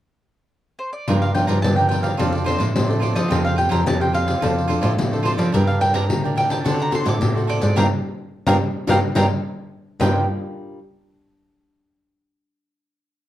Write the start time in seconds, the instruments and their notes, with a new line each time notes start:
0.79 mandolin C5
0.93 mandolin D5
1.08 nylon-string guitar G2 F3 A#3 D4, cavaquinho F4 A#4 D5 G5, pandeiro
1.22 mandolin F5, pandeiro
1.35 nylon-string guitar F3 A#3 D4, cavaquinho F4 A#4 D5 G5, mandolin G5, pandeiro
1.47 nylon-string guitar G2, cavaquinho F4 A#4 D5 G5, mandolin A#5, pandeiro
1.62 nylon-string guitar G2 D3, mandolin A5, pandeiro
1.76 nylon-string guitar F3 A#3 D4, cavaquinho A#4 D5 G5, mandolin G5, pandeiro
1.89 cavaquinho F4 A#4 D5 G5, mandolin G5, pandeiro
2.02 cavaquinho A#4 D5 G5, mandolin F5, pandeiro
2.17 nylon-string guitar F2 F3 C4 D4 A4, cavaquinho F4 A4 C5 D5, pandeiro
2.32 mandolin D5, pandeiro
2.44 nylon-string guitar C4 D4 A4, cavaquinho F4 A4 C5 D5, mandolin C5, pandeiro
2.58 nylon-string guitar A2, cavaquinho F4 A4 C5 D5, pandeiro
2.74 nylon-string guitar A2 F3, pandeiro
2.88 nylon-string guitar C4 D4 A4, cavaquinho A4 C5 D5, pandeiro
3.00 cavaquinho F4 A4 C5 D5, mandolin D5, pandeiro
3.13 nylon-string guitar F3, cavaquinho A4 C5 D5, mandolin D#5, pandeiro
3.28 nylon-string guitar F2 F3 C4 F4 G4, cavaquinho F4 G4 C5 F5, pandeiro
3.45 mandolin F5, pandeiro
3.56 nylon-string guitar C4 F4 G4, cavaquinho F4 G4 C5 F5, mandolin G5, pandeiro
3.69 nylon-string guitar F2, cavaquinho F4 G4 C5 F5, mandolin A#5, pandeiro
3.86 nylon-string guitar F2 C3, mandolin A5, pandeiro
4.00 nylon-string guitar C4 F4 G4, cavaquinho G4 C5 F5, mandolin G5, pandeiro
4.12 cavaquinho F4 G4 C5 F5, mandolin F5, pandeiro
4.25 cavaquinho G4 C5 F5, pandeiro
4.41 nylon-string guitar F2 F3 C4 D4 A4, cavaquinho F4 A4 C5 D5, pandeiro
4.58 pandeiro
4.68 nylon-string guitar C4 D4 A4, cavaquinho F4 A4 C5 D5, pandeiro
4.81 nylon-string guitar A2, cavaquinho F4 A4 C5 D5, pandeiro
4.98 nylon-string guitar A2 F3, pandeiro
5.11 nylon-string guitar C4 D4 A4, cavaquinho A4 C5 D5, pandeiro
5.23 cavaquinho F4 A4 C5 D5, mandolin C5, pandeiro
5.37 nylon-string guitar F3, cavaquinho A4 C5 D5, mandolin D5, pandeiro
5.52 nylon-string guitar G2 G3 A#3 D4 A#4, cavaquinho D4 A#4 D5 G5, pandeiro
5.67 mandolin F5, pandeiro
5.80 nylon-string guitar A#3 D4 A#4, cavaquinho D4 A#4 D5 G5, mandolin G5, pandeiro
5.94 nylon-string guitar G2, cavaquinho D4 A#4 D5 G5, mandolin A#5, pandeiro
6.09 nylon-string guitar A2 D3, pandeiro
6.24 nylon-string guitar D4 A#4, cavaquinho A#4 D5 G5, pandeiro
6.35 cavaquinho D4 A#4 D5 G5, mandolin G5, pandeiro
6.50 cavaquinho A#4 D5 G5, mandolin A5, pandeiro
6.64 nylon-string guitar D3 C4 F#4 A4, cavaquinho F#4 A4 C5 D5, pandeiro
6.79 mandolin A#5, pandeiro
6.91 nylon-string guitar C4 F#4 A4, cavaquinho F#4 A4 C5 D5, mandolin C6, pandeiro
7.04 nylon-string guitar A2, cavaquinho F#4 A4 C5 D5, pandeiro
7.08 mandolin D6
7.21 nylon-string guitar A2, pandeiro
7.34 nylon-string guitar C4 F#4 A4, cavaquinho A4 C5 D5, pandeiro
7.47 cavaquinho F#4 A4 C5 D5, mandolin D5, pandeiro
7.61 nylon-string guitar G#2, cavaquinho A4 C5 D5, mandolin D5, pandeiro
7.76 nylon-string guitar G2 D4 F4 G4, cavaquinho G4 A#4 D5, mandolin F5 G5 A#5, pandeiro
8.46 nylon-string guitar G2 D4 F4 G4, cavaquinho G4 A#4 D5, mandolin F5 G5 A#5, pandeiro
8.87 nylon-string guitar G2 D4 F4 G4, cavaquinho G4 A#4 D5, mandolin F5 G5 A#5, pandeiro
9.15 nylon-string guitar G2 D4 F4 G4, cavaquinho G4 A#4 D5, mandolin F5 G5 A#5, pandeiro
10.00 nylon-string guitar G2 G3 D4 F4 A#4, cavaquinho F4 A#4 D5 G5, mandolin G5, pandeiro